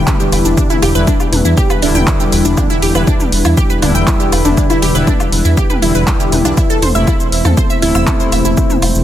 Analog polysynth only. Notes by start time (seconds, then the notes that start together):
Already playing: D3 G3 E4
0.95 D3 G3 E4
1.82 D3 G3 E4
2.95 D3 G3 E4
3.83 D3 G3 E4
4.95 D3 G3 E4
5.82 D3 G3 E4
6.95 C3 A3 E4
7.82 C3 A3 E4